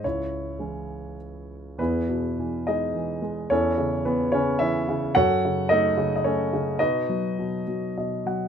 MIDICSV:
0, 0, Header, 1, 2, 480
1, 0, Start_track
1, 0, Key_signature, 4, "major"
1, 0, Tempo, 555042
1, 36, Time_signature, 3, 2, 24, 8
1, 517, Tempo, 588813
1, 2437, Tempo, 548948
1, 5797, Tempo, 587084
1, 7174, End_track
2, 0, Start_track
2, 0, Title_t, "Grand piano"
2, 0, Program_c, 0, 0
2, 0, Control_c, 0, 64, 127
2, 37, Note_on_c, 0, 37, 38
2, 37, Note_on_c, 0, 73, 63
2, 47, Note_on_c, 0, 64, 43
2, 49, Control_c, 0, 64, 0
2, 171, Control_c, 0, 64, 127
2, 509, Note_on_c, 0, 52, 29
2, 514, Note_on_c, 0, 56, 31
2, 518, Note_on_c, 0, 61, 34
2, 963, Note_off_c, 0, 73, 0
2, 968, Note_off_c, 0, 64, 0
2, 977, Note_off_c, 0, 52, 0
2, 979, Note_off_c, 0, 56, 0
2, 981, Note_off_c, 0, 61, 0
2, 1456, Note_off_c, 0, 37, 0
2, 1482, Note_on_c, 0, 40, 48
2, 1488, Note_on_c, 0, 71, 64
2, 1500, Control_c, 0, 64, 0
2, 1500, Note_on_c, 0, 64, 49
2, 1505, Note_on_c, 0, 59, 41
2, 1510, Note_on_c, 0, 68, 43
2, 1643, Control_c, 0, 64, 127
2, 1734, Note_on_c, 0, 47, 45
2, 1979, Note_on_c, 0, 52, 40
2, 2180, Note_off_c, 0, 64, 0
2, 2183, Note_off_c, 0, 59, 0
2, 2185, Note_off_c, 0, 68, 0
2, 2204, Note_on_c, 0, 75, 67
2, 2215, Note_on_c, 0, 68, 48
2, 2218, Note_on_c, 0, 56, 44
2, 2219, Note_on_c, 0, 63, 46
2, 2229, Note_off_c, 0, 71, 0
2, 2424, Note_off_c, 0, 52, 0
2, 2436, Note_on_c, 0, 52, 38
2, 2652, Note_off_c, 0, 47, 0
2, 2657, Note_off_c, 0, 56, 0
2, 2670, Note_on_c, 0, 56, 48
2, 2884, Note_off_c, 0, 40, 0
2, 2892, Note_off_c, 0, 68, 0
2, 2894, Note_off_c, 0, 63, 0
2, 2908, Note_off_c, 0, 52, 0
2, 2910, Note_off_c, 0, 56, 0
2, 2915, Note_on_c, 0, 73, 80
2, 2916, Note_on_c, 0, 40, 49
2, 2924, Note_on_c, 0, 61, 58
2, 2927, Note_on_c, 0, 64, 56
2, 2932, Note_on_c, 0, 69, 57
2, 2933, Control_c, 0, 64, 0
2, 2943, Note_off_c, 0, 75, 0
2, 3070, Control_c, 0, 64, 127
2, 3160, Note_on_c, 0, 49, 48
2, 3365, Note_off_c, 0, 73, 0
2, 3371, Note_off_c, 0, 61, 0
2, 3372, Note_off_c, 0, 64, 0
2, 3375, Note_off_c, 0, 69, 0
2, 3398, Note_on_c, 0, 52, 45
2, 3399, Note_on_c, 0, 71, 65
2, 3413, Note_on_c, 0, 59, 58
2, 3621, Note_off_c, 0, 49, 0
2, 3624, Note_off_c, 0, 71, 0
2, 3630, Note_on_c, 0, 73, 78
2, 3631, Note_off_c, 0, 59, 0
2, 3634, Note_on_c, 0, 49, 54
2, 3652, Note_on_c, 0, 61, 61
2, 3860, Note_off_c, 0, 73, 0
2, 3863, Note_off_c, 0, 52, 0
2, 3867, Note_on_c, 0, 76, 88
2, 3872, Note_off_c, 0, 61, 0
2, 3876, Note_on_c, 0, 52, 45
2, 3883, Note_on_c, 0, 73, 57
2, 3885, Note_on_c, 0, 64, 53
2, 4114, Note_off_c, 0, 49, 0
2, 4127, Note_on_c, 0, 49, 49
2, 4324, Note_off_c, 0, 76, 0
2, 4328, Note_off_c, 0, 40, 0
2, 4332, Note_off_c, 0, 73, 0
2, 4333, Note_off_c, 0, 64, 0
2, 4348, Note_off_c, 0, 52, 0
2, 4356, Note_on_c, 0, 78, 99
2, 4360, Note_off_c, 0, 49, 0
2, 4366, Note_on_c, 0, 66, 65
2, 4369, Note_on_c, 0, 42, 56
2, 4369, Note_on_c, 0, 73, 72
2, 4370, Note_on_c, 0, 69, 70
2, 4377, Control_c, 0, 64, 0
2, 4537, Control_c, 0, 64, 127
2, 4620, Note_on_c, 0, 49, 47
2, 4807, Note_off_c, 0, 66, 0
2, 4809, Note_off_c, 0, 73, 0
2, 4810, Note_off_c, 0, 69, 0
2, 4831, Note_on_c, 0, 75, 91
2, 4845, Note_on_c, 0, 63, 65
2, 4845, Note_on_c, 0, 69, 62
2, 4850, Note_off_c, 0, 78, 0
2, 4856, Note_on_c, 0, 57, 49
2, 5065, Note_off_c, 0, 49, 0
2, 5078, Note_on_c, 0, 49, 56
2, 5224, Note_off_c, 0, 75, 0
2, 5227, Note_off_c, 0, 69, 0
2, 5228, Note_off_c, 0, 63, 0
2, 5237, Note_on_c, 0, 75, 66
2, 5303, Note_off_c, 0, 75, 0
2, 5304, Note_off_c, 0, 57, 0
2, 5315, Note_on_c, 0, 73, 70
2, 5317, Note_on_c, 0, 57, 45
2, 5325, Note_on_c, 0, 61, 49
2, 5325, Note_on_c, 0, 69, 56
2, 5553, Note_off_c, 0, 49, 0
2, 5567, Note_on_c, 0, 49, 53
2, 5762, Note_off_c, 0, 42, 0
2, 5769, Note_off_c, 0, 61, 0
2, 5769, Note_off_c, 0, 69, 0
2, 5784, Note_off_c, 0, 57, 0
2, 5793, Note_on_c, 0, 75, 82
2, 5796, Note_off_c, 0, 49, 0
2, 5797, Note_on_c, 0, 66, 54
2, 5798, Note_on_c, 0, 71, 54
2, 5800, Note_on_c, 0, 47, 55
2, 5800, Note_on_c, 0, 63, 54
2, 5806, Control_c, 0, 64, 0
2, 5811, Note_off_c, 0, 73, 0
2, 5942, Control_c, 0, 64, 127
2, 6040, Note_on_c, 0, 54, 45
2, 6267, Note_off_c, 0, 47, 0
2, 6280, Note_on_c, 0, 47, 48
2, 6467, Note_off_c, 0, 75, 0
2, 6468, Note_off_c, 0, 66, 0
2, 6469, Note_off_c, 0, 63, 0
2, 6469, Note_off_c, 0, 71, 0
2, 6505, Note_off_c, 0, 54, 0
2, 6517, Note_on_c, 0, 54, 41
2, 6748, Note_off_c, 0, 47, 0
2, 6761, Note_on_c, 0, 47, 40
2, 6761, Note_on_c, 0, 75, 44
2, 6982, Note_off_c, 0, 54, 0
2, 6986, Note_off_c, 0, 75, 0
2, 6994, Note_on_c, 0, 54, 41
2, 7000, Note_on_c, 0, 78, 53
2, 7174, Note_off_c, 0, 47, 0
2, 7174, Note_off_c, 0, 54, 0
2, 7174, Note_off_c, 0, 78, 0
2, 7174, End_track
0, 0, End_of_file